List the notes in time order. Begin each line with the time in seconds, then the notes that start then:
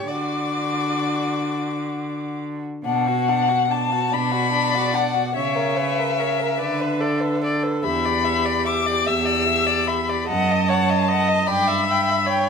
0.07 D3 F#4 D5 D6
2.84 B2 D4 F#5
3.08 F#4
3.29 D4
3.49 F#4
3.69 D4 A5
3.91 F#4
4.12 B2 D4 D5 B5
4.32 F#4
4.52 D4
4.74 F#4
4.93 D4 F#5
5.15 F#4
5.35 C#3 C#5 E5
5.56 A#4
5.77 B4 C#5
5.99 A#4
6.16 A#4 C#5
6.39 A#4
6.59 D3 B4 D5
6.81 B4
7.00 A4 D5
7.21 B4
7.42 A4 D5
7.63 B4
7.84 E2 G4 E5 B5
8.05 D5
8.24 E5
8.44 D5
8.66 E5 D6
8.86 D5
9.06 E2 E5 E6
9.25 D5
9.48 E5
9.66 D5
9.87 E5 B5
10.09 D5
10.28 F#2 D#5 F#5 A5
10.51 D#5
10.69 C#5 F#5
10.90 D#5
11.09 D#5 F#5
11.28 D#5
11.47 G2 D5 G5 B5
11.67 E5
11.87 E5
11.91 G5
12.10 E5
12.26 C#5 G5